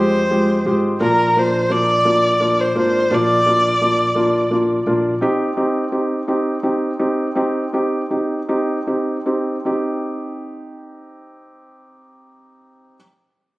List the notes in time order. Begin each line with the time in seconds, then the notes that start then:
Already playing: F2 G#3 F4 G4 C5
0.31 G#3 F4 G4
0.65 G#1 G#3 F4 G4
1.00 A#1 A#3 D4 F4 A#4
1.36 A#3 D4 F4 C5
1.70 A#3 D4 F4 D5
2.05 A#3 D4 F4
2.40 A#3 D4 F4
2.61 C5
2.75 G#1 A#3 D4 F4 C5
3.10 A#1 A#3 D4 F4 D5
3.46 A#3 D4 F4
3.81 A#3 D4 F4
4.15 A#3 D4 F4
4.50 A#3 D4 F4
4.86 A#1 A#3 D4 F4
5.21 C4 D#4 G4
5.57 C4 D#4 G4
5.92 C4 D#4 G4
6.28 C4 D#4 G4
6.63 C4 D#4 G4
6.99 C4 D#4 G4
7.35 C4 D#4 G4
7.73 C4 D#4 G4
8.10 C4 D#4 G4
8.48 C4 D#4 G4
8.87 C4 D#4 G4
9.26 C4 D#4 G4
9.65 C4 D#4 G4